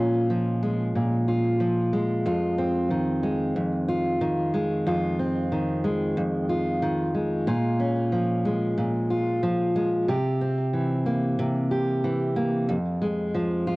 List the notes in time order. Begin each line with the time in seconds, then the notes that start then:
Already playing: A#2 F3 G#3 C#4 F4
0.30 F3
0.63 G#3
0.95 A#2
1.28 F4
1.60 F3
1.93 G#3
2.26 F2 F4
2.58 C4
2.90 D#3
3.23 G#3
3.56 F2
3.88 F4
4.21 D#3
4.54 G#3
4.87 F2 F4
5.19 C4
5.52 D#3
5.84 G#3
6.17 F2
6.49 F4
6.82 D#3
7.14 G#3
7.47 A#2 F4
7.80 C#4
8.12 F3
8.45 G#3
8.78 A#2
9.10 F4
9.43 F3
9.76 G#3
10.08 C3 G4
10.41 C4
10.73 E3
11.06 A#3
11.39 C3
11.71 G4
12.04 E3
12.36 A#3
12.69 F2
13.02 G#3
13.35 F3
13.67 F4